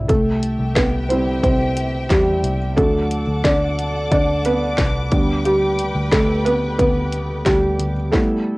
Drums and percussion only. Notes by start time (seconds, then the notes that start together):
0.09 kick, closed hi-hat
0.43 closed hi-hat
0.76 kick, snare, closed hi-hat
1.10 closed hi-hat
1.44 kick, closed hi-hat
1.77 closed hi-hat
2.10 kick, snare, closed hi-hat
2.44 closed hi-hat
2.78 kick, closed hi-hat
3.11 closed hi-hat
3.44 kick, snare, closed hi-hat
3.79 closed hi-hat
4.12 kick, closed hi-hat
4.45 closed hi-hat
4.78 kick, snare, closed hi-hat
5.12 kick, closed hi-hat
5.45 closed hi-hat
5.79 closed hi-hat
6.12 kick, snare, closed hi-hat
6.46 closed hi-hat
6.79 kick, closed hi-hat
7.13 closed hi-hat
7.46 kick, snare, closed hi-hat
7.79 closed hi-hat
8.13 kick, snare